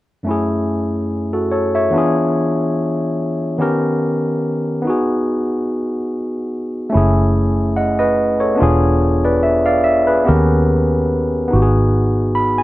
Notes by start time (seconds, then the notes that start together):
0.23 F#2 A3 C#4
0.29 E4 G#4
1.33 F#4 A4
1.52 A4 C#5
1.75 C#5 E5
1.90 E3 B3 D4
1.96 F4 G#4
3.58 D#3 B3 C#4 G4 A#4
4.82 B3 D#4
4.87 F#4 G#4
6.90 A3 C#4
6.94 F#1 E4 G#4
7.76 D#5 F#5
7.99 B4 D#5
8.40 A4 C#5
8.55 B3 D4
8.60 E1 F4 G#4
9.24 B4 D5
9.43 E5
9.66 D5 F5
9.84 E5
10.07 G#4 B4
10.25 B3 C#4 G4 A#4
10.29 D#2
11.48 B3 D#4
11.53 G#1 F#4 G4
11.62 G#4
12.35 B5
12.58 G#5